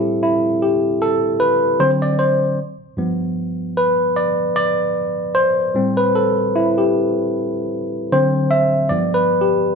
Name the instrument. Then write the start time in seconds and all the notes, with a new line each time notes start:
tine electric piano
Already playing: A2 G3 C4 E4 G4 A4
0.23 E4
0.62 G4
1.02 A4
1.40 B4
1.79 D3 F#3 C4 C5
2.02 D5
2.19 C5
2.97 G2 F3 B3
3.77 B4
4.16 D5
4.56 D5
5.35 C5
5.74 A2 G3 C4
5.97 B4
6.15 A4
6.56 E4
6.78 G4
8.12 D3 F#3 C4 C5
8.51 E5
8.89 G2 F3 B3 D5
9.14 B4
9.41 G4